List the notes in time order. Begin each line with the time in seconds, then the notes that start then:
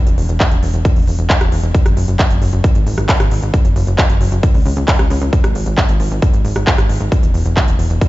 0.07 E1, closed hi-hat
0.18 E1, open hi-hat
0.29 E1, closed hi-hat
0.40 kick, clap, closed hi-hat
0.51 E1, closed hi-hat
0.63 E1, open hi-hat
0.74 E1, closed hi-hat
0.85 kick, closed hi-hat
0.96 E1, open hi-hat
1.07 E1, open hi-hat
1.19 E1, closed hi-hat
1.30 kick, clap, closed hi-hat
1.41 E1, cross-stick, closed hi-hat
1.52 E1, open hi-hat
1.63 E1, closed hi-hat
1.75 kick, closed hi-hat
1.86 F#1, cross-stick, closed hi-hat
1.97 F#1, open hi-hat
2.08 F#1, closed hi-hat
2.19 kick, clap, closed hi-hat
2.31 F#1, closed hi-hat
2.42 F#1, open hi-hat
2.53 F#1, closed hi-hat
2.64 kick, closed hi-hat
2.75 G#1, closed hi-hat
2.86 G#1, open hi-hat
2.98 G#1, cross-stick, closed hi-hat
3.09 kick, clap, closed hi-hat
3.20 G#1, cross-stick, closed hi-hat
3.31 G#1, open hi-hat
3.42 G#1, closed hi-hat
3.54 kick, closed hi-hat
3.65 F#1, closed hi-hat
3.76 F#1, open hi-hat
3.87 F#1, closed hi-hat
3.98 kick, clap, closed hi-hat
4.10 F#1, closed hi-hat
4.21 F#1, open hi-hat
4.32 F#1, closed hi-hat
4.43 kick, closed hi-hat
4.54 C#2, open hi-hat
4.66 C#2, open hi-hat
4.77 C#2, closed hi-hat
4.88 kick, clap, closed hi-hat
4.99 C#2, cross-stick, closed hi-hat
5.10 C#2, open hi-hat
5.22 C#2, closed hi-hat
5.33 kick, closed hi-hat
5.44 G#1, cross-stick, closed hi-hat
5.55 G#1, open hi-hat
5.66 G#1, closed hi-hat
5.78 kick, clap, closed hi-hat
5.89 G#1, closed hi-hat
6.00 G#1, open hi-hat
6.11 G#1, closed hi-hat
6.22 kick, closed hi-hat
6.34 G#1, closed hi-hat
6.45 G#1, open hi-hat
6.56 G#1, cross-stick, closed hi-hat
6.67 kick, clap, closed hi-hat
6.78 G#1, cross-stick, closed hi-hat
6.89 G#1, open hi-hat
7.01 G#1, closed hi-hat
7.12 kick, closed hi-hat
7.23 E1, closed hi-hat
7.34 E1, open hi-hat
7.45 E1, closed hi-hat
7.57 kick, clap, closed hi-hat
7.68 E1, closed hi-hat
7.79 E1, open hi-hat
7.90 E1, closed hi-hat
8.01 kick, closed hi-hat